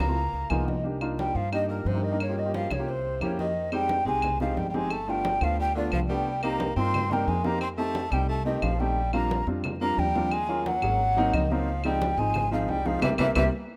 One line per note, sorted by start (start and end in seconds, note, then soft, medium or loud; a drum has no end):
0.00 0.31 C#2 medium
0.00 0.51 A#3 medium
0.00 0.51 A#5 loud
0.00 high conga medium
0.08 0.17 A3 medium
0.08 0.17 C4 medium
0.08 0.17 E4 medium
0.08 0.17 F4 medium
0.17 high conga soft
0.33 0.49 C#2 medium
0.33 high conga soft
0.50 1.29 C2 medium
0.50 0.68 G#3 medium
0.50 0.74 A#3 medium
0.50 0.74 B3 medium
0.50 0.74 D#4 medium
0.50 0.74 F4 medium
0.50 0.69 G#5 medium
0.50 high conga medium
0.50 claves medium
0.67 0.84 D#3 medium
0.67 0.85 D#5 medium
0.67 high conga medium
0.83 0.96 A#3 medium
0.83 0.96 D4 medium
0.83 0.96 D#4 medium
0.83 0.96 G4 medium
0.83 high conga soft
1.01 1.37 A#3 medium
1.01 1.37 D4 medium
1.01 1.37 D#4 medium
1.01 1.37 F4 medium
1.01 high conga soft
1.01 claves medium
1.18 1.36 G3 medium
1.18 1.37 G5 medium
1.18 high conga medium
1.35 1.82 G2 medium
1.35 1.51 F3 medium
1.35 1.52 F5 medium
1.35 high conga soft
1.52 1.68 D#3 medium
1.52 1.82 A#3 medium
1.52 1.82 D4 medium
1.52 1.82 D#4 medium
1.52 1.82 G4 medium
1.52 1.68 D#5 loud
1.52 high conga soft
1.52 claves medium
1.68 1.88 A#2 medium
1.68 1.88 A#4 medium
1.68 high conga soft
1.85 2.65 G2 medium
1.85 2.05 C3 medium
1.85 2.05 C5 medium
1.85 high conga medium
1.94 2.06 A#3 medium
1.94 2.06 D4 medium
1.94 2.07 D#4 medium
1.94 2.07 G4 medium
2.03 2.20 D#3 medium
2.03 2.20 D#5 medium
2.12 2.20 A#3 medium
2.12 2.20 D4 medium
2.12 2.20 D#4 medium
2.12 2.21 A#4 medium
2.20 2.39 C#3 medium
2.20 2.40 C#5 medium
2.20 high conga soft
2.20 claves medium
2.29 2.40 A#3 medium
2.29 2.40 C#4 medium
2.29 2.41 F4 medium
2.29 2.41 G4 medium
2.37 2.54 D#3 medium
2.37 2.54 D#5 medium
2.37 high conga soft
2.45 2.69 A#3 medium
2.45 2.69 C#4 medium
2.45 2.69 F4 medium
2.45 2.69 G4 medium
2.54 2.72 F3 medium
2.54 2.73 F5 medium
2.54 high conga medium
2.70 3.18 C2 medium
2.70 2.89 C#3 medium
2.70 2.90 C#5 medium
2.70 high conga medium
2.70 claves medium
2.79 2.88 A#3 medium
2.79 2.88 C#4 medium
2.79 2.88 F4 medium
2.79 2.88 G4 medium
2.88 3.21 C3 medium
2.88 3.22 C5 medium
2.88 high conga soft
3.05 high conga soft
3.20 4.00 F2 medium
3.20 3.37 C#3 medium
3.20 3.45 A#3 medium
3.20 3.45 C#4 medium
3.20 3.45 E4 medium
3.20 3.46 G4 medium
3.20 3.38 C#5 medium
3.20 high conga medium
3.20 claves medium
3.39 3.71 D#3 medium
3.39 3.71 D#5 medium
3.39 high conga medium
3.56 high conga soft
3.72 4.04 G3 medium
3.72 3.96 G#3 medium
3.72 3.96 C4 medium
3.72 3.96 D#4 medium
3.72 3.96 G4 medium
3.72 4.05 G5 medium
3.72 high conga soft
3.72 claves medium
3.89 high conga medium
4.05 4.53 C2 medium
4.05 4.30 G#3 medium
4.05 4.38 G#3 medium
4.05 4.30 C4 medium
4.05 4.30 D#4 medium
4.05 4.30 G4 medium
4.05 4.38 G#5 loud
4.05 high conga soft
4.22 high conga soft
4.22 low conga medium
4.22 claves medium
4.40 4.59 F3 medium
4.40 4.64 G#3 medium
4.40 4.64 C4 medium
4.40 4.64 D#4 medium
4.40 4.64 G4 medium
4.40 4.60 F5 medium
4.40 high conga soft
4.40 low conga medium
4.57 5.36 G1 medium
4.57 4.69 G3 medium
4.57 4.70 G5 medium
4.57 high conga medium
4.69 4.76 G3 medium
4.69 4.77 G5 medium
4.74 4.91 G#3 medium
4.74 4.93 G#3 medium
4.74 4.91 C4 medium
4.74 4.91 D#4 medium
4.74 4.91 G4 medium
4.74 4.94 G#5 medium
4.74 high conga medium
4.90 5.10 A3 medium
4.90 5.11 A5 medium
4.90 high conga soft
4.90 claves medium
5.08 5.43 G3 medium
5.08 5.31 A3 medium
5.08 5.32 B3 medium
5.08 5.32 D4 medium
5.08 5.32 F4 medium
5.08 5.45 G5 loud
5.08 high conga soft
5.25 high conga loud
5.41 5.88 D2 loud
5.41 5.58 F3 medium
5.41 5.65 A3 medium
5.41 5.65 B3 medium
5.41 5.66 D4 medium
5.41 5.66 F4 medium
5.41 5.59 F5 loud
5.41 high conga soft
5.41 claves medium
5.59 5.74 G3 medium
5.59 5.75 G5 loud
5.59 high conga soft
5.75 5.91 D3 medium
5.75 5.99 A3 medium
5.75 5.99 B3 medium
5.75 6.00 D4 medium
5.75 6.00 F4 medium
5.75 5.92 D5 medium
5.75 high conga soft
5.92 6.71 C2 medium
5.92 6.00 F3 medium
5.92 6.00 F5 medium
5.92 high conga medium
5.92 claves medium
6.09 6.41 G3 medium
6.09 6.26 A3 medium
6.09 6.26 B3 medium
6.09 6.27 D4 medium
6.09 6.27 G4 medium
6.09 6.41 G5 medium
6.09 high conga soft
6.27 high conga soft
6.43 6.67 A#3 medium
6.43 6.75 A#3 medium
6.43 6.67 C4 medium
6.43 6.67 D#4 medium
6.43 6.67 G4 medium
6.43 6.75 A#5 loud
6.43 high conga soft
6.43 claves medium
6.60 high conga medium
6.76 7.24 G2 medium
6.76 7.01 A#3 medium
6.76 7.12 C4 medium
6.76 7.01 C4 medium
6.76 7.01 D#4 medium
6.76 7.01 F4 medium
6.76 7.14 C6 loud
6.76 high conga soft
6.94 high conga soft
6.94 low conga medium
6.94 claves medium
7.11 7.28 G3 medium
7.11 7.34 A#3 medium
7.11 7.35 C4 medium
7.11 7.35 D#4 medium
7.11 7.35 A#4 loud
7.11 7.30 G5 loud
7.11 high conga soft
7.11 low conga medium
7.27 8.06 F2 medium
7.27 7.46 G#3 medium
7.27 7.47 G#5 medium
7.27 high conga medium
7.44 7.60 A#3 medium
7.44 7.61 A#3 medium
7.44 7.61 C4 medium
7.44 7.61 D#4 medium
7.44 7.62 G4 medium
7.44 7.61 A#5 medium
7.44 high conga medium
7.61 7.68 C4 medium
7.61 7.68 C6 loud
7.61 high conga soft
7.61 claves medium
7.78 8.13 A3 medium
7.78 8.02 A3 medium
7.78 8.02 C4 medium
7.78 8.02 D#4 medium
7.78 8.02 G4 medium
7.78 8.15 A5 loud
7.78 high conga soft
7.95 high conga medium
8.11 8.59 C2 loud
8.11 8.28 G3 medium
8.11 8.36 A3 medium
8.11 8.36 C4 medium
8.11 8.36 D#4 medium
8.11 8.36 G4 medium
8.11 8.29 G5 medium
8.11 high conga soft
8.11 claves medium
8.29 8.45 A3 medium
8.29 8.45 A5 loud
8.29 high conga soft
8.45 8.65 D#3 medium
8.45 8.69 A3 medium
8.45 8.69 C4 medium
8.45 8.70 D#4 medium
8.45 8.70 G4 medium
8.45 8.64 D#5 medium
8.45 high conga soft
8.62 9.41 A#1 medium
8.62 8.80 F3 medium
8.62 8.81 F5 medium
8.62 high conga medium
8.62 claves medium
8.79 9.13 G3 medium
8.79 8.97 A3 medium
8.79 8.97 C4 medium
8.79 8.97 D#4 medium
8.79 8.97 G4 medium
8.79 9.14 G5 medium
8.79 high conga soft
8.97 high conga soft
9.13 9.37 G3 medium
9.13 9.45 A#3 medium
9.13 9.37 C4 medium
9.13 9.37 D4 medium
9.13 9.37 F4 medium
9.13 9.45 A#5 medium
9.13 high conga soft
9.13 claves medium
9.31 high conga medium
9.47 9.94 F2 medium
9.47 9.71 G3 medium
9.47 9.71 C4 medium
9.47 9.71 D4 medium
9.47 9.71 F4 medium
9.47 high conga soft
9.64 high conga soft
9.64 low conga medium
9.64 claves medium
9.81 10.05 G3 medium
9.81 10.00 A#3 medium
9.81 10.05 C4 medium
9.81 10.05 D4 medium
9.81 10.05 F4 medium
9.81 10.00 A#5 loud
9.81 high conga soft
9.97 10.76 D#2 medium
9.97 10.34 G3 medium
9.97 10.34 G5 loud
9.97 high conga medium
10.15 10.32 G3 medium
10.15 10.32 C4 medium
10.15 10.32 D4 medium
10.15 10.32 F4 medium
10.15 high conga medium
10.31 10.67 G#3 medium
10.31 10.68 G#5 loud
10.31 high conga soft
10.31 claves medium
10.49 10.72 F#3 medium
10.49 10.72 A#3 medium
10.49 10.72 C#4 medium
10.49 10.73 F4 medium
10.49 high conga soft
10.66 11.35 F#3 medium
10.66 11.36 F#5 loud
10.66 high conga medium
10.82 11.29 G#1 medium
10.82 10.99 F#3 medium
10.82 10.99 A#3 medium
10.82 11.00 C#4 medium
10.82 11.00 G#4 medium
10.82 high conga soft
10.82 claves medium
11.00 high conga soft
11.17 11.40 F#3 loud
11.17 11.40 A#3 medium
11.17 11.40 C4 medium
11.17 11.41 D#4 loud
11.17 high conga soft
11.33 12.12 C#2 medium
11.33 11.52 D#3 medium
11.33 11.53 D#5 medium
11.33 high conga medium
11.33 claves medium
11.51 11.84 F3 medium
11.51 11.67 F#3 medium
11.51 11.67 A#3 medium
11.51 11.67 C4 medium
11.51 11.68 D#4 medium
11.51 11.85 F5 medium
11.51 high conga soft
11.68 high conga soft
11.84 12.08 F3 medium
11.84 12.20 G3 medium
11.84 12.08 G#3 medium
11.84 12.08 C4 medium
11.84 12.08 D#4 medium
11.84 12.20 G5 loud
11.84 high conga soft
11.84 claves medium
12.02 high conga medium
12.17 12.65 G#1 loud
12.17 12.41 F3 medium
12.17 12.51 G#3 medium
12.17 12.42 G#3 medium
12.17 12.42 C4 medium
12.17 12.42 D#4 medium
12.17 12.52 G#5 loud
12.17 high conga soft
12.34 high conga soft
12.34 low conga medium
12.34 claves medium
12.51 12.71 F3 medium
12.51 12.75 F3 medium
12.51 12.75 G#3 medium
12.51 12.75 C4 medium
12.51 12.76 D#4 loud
12.51 12.71 F5 medium
12.51 high conga soft
12.68 13.00 C2 medium
12.68 12.88 G3 medium
12.68 12.88 G5 medium
12.68 high conga medium
12.85 13.02 F3 medium
12.85 13.01 F3 medium
12.85 13.02 G#3 medium
12.85 13.01 C4 medium
12.85 13.02 D#4 medium
12.85 13.02 F5 medium
12.85 high conga medium
13.02 13.15 C2 medium
13.02 13.10 E3 medium
13.02 13.13 G3 loud
13.02 13.13 A#3 medium
13.02 13.13 C4 medium
13.02 13.13 E5 medium
13.02 low conga loud
13.02 claves loud
13.18 13.31 C2 medium
13.18 13.27 E3 loud
13.18 13.30 G3 medium
13.18 13.30 A#3 loud
13.18 13.30 C4 medium
13.18 13.31 E5 loud
13.18 low conga medium
13.18 claves medium
13.35 13.48 C2 loud
13.35 13.44 E3 medium
13.35 13.47 G3 loud
13.35 13.47 A#3 medium
13.35 13.47 C4 loud
13.35 13.48 E5 loud
13.35 low conga medium
13.35 claves loud